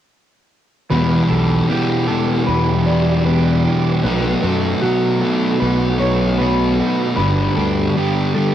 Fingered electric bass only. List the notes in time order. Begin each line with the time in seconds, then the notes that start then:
0.92 E2
1.30 B1
2.48 E2
4.04 B1
4.44 F#2
5.62 B1
7.18 G1
7.58 D2